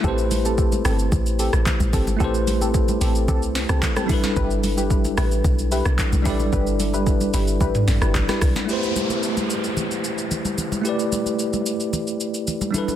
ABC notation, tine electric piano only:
X:1
M:4/4
L:1/8
Q:1/4=111
K:Am
V:1 name="Tine electric piano"
[A,EGBc]8 | [A,EGBc]6- [A,EGBc] [G,DEAB]- | [G,DEAB]6- [G,DEAB] [G,DEAd]- | [G,DEAd]6- [G,DEAd] z |
[A,EGBc]8 | [A,EGBd]6- [A,EGBd] [G,DEAB] |]